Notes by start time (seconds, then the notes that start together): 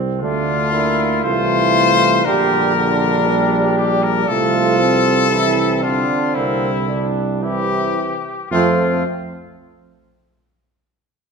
Already playing: C2 C4
0.19 D2 D3 A3 D4 F4
0.72 A#3 E4
1.23 C2 E3 A3 F4 C5
2.25 A#1 D3 G3 G4 A#4
2.75 D3 D4
3.27 G3
3.77 G4
4.03 A#4
4.27 C2 F3 A3 F4 A4
4.79 C4
5.30 E3 C4 E4
5.82 D3 D4 F4
6.34 C2 A#3 C4 E4
6.88 G3 D4
7.41 C3 E3 E4 G4
8.50 F2 F3 A3 C4 F4